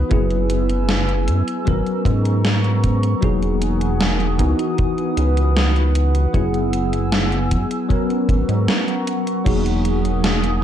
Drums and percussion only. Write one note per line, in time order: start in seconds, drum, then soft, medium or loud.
0.11 kick loud
0.11 closed hi-hat soft
0.30 closed hi-hat soft
0.50 closed hi-hat medium
0.69 closed hi-hat soft
0.89 snare loud
0.89 closed hi-hat medium
1.09 closed hi-hat soft
1.28 closed hi-hat medium
1.48 closed hi-hat soft
1.67 kick loud
1.67 closed hi-hat soft
1.86 closed hi-hat soft
2.05 kick medium
2.05 closed hi-hat medium
2.25 closed hi-hat soft
2.45 snare loud
2.45 closed hi-hat medium
2.64 closed hi-hat soft
2.84 kick medium
2.84 closed hi-hat medium
3.03 closed hi-hat soft
3.22 kick loud
3.22 closed hi-hat soft
3.42 closed hi-hat soft
3.62 closed hi-hat medium
3.81 closed hi-hat medium
4.01 snare loud
4.01 closed hi-hat medium
4.20 closed hi-hat soft
4.39 kick medium
4.39 closed hi-hat medium
4.59 closed hi-hat soft
4.78 kick loud
4.78 closed hi-hat medium
4.98 closed hi-hat soft
5.17 closed hi-hat medium
5.37 closed hi-hat medium
5.57 snare loud
5.57 closed hi-hat medium
5.76 closed hi-hat soft
5.95 closed hi-hat medium
6.15 closed hi-hat medium
6.34 kick loud
6.34 closed hi-hat medium
6.54 closed hi-hat soft
6.73 closed hi-hat medium
6.93 closed hi-hat medium
7.12 snare loud
7.12 closed hi-hat medium
7.32 closed hi-hat soft
7.51 kick medium
7.51 closed hi-hat medium
7.71 closed hi-hat medium
7.90 kick loud
7.90 closed hi-hat medium
8.10 closed hi-hat soft
8.29 kick loud
8.29 closed hi-hat loud
8.49 closed hi-hat medium
8.68 snare loud
8.68 closed hi-hat medium
8.88 closed hi-hat soft
9.07 closed hi-hat medium
9.27 closed hi-hat soft
9.46 kick loud
9.46 closed hi-hat loud
9.46 crash loud
9.66 closed hi-hat soft
9.85 closed hi-hat medium
10.05 closed hi-hat soft
10.24 snare loud
10.24 closed hi-hat loud
10.44 closed hi-hat soft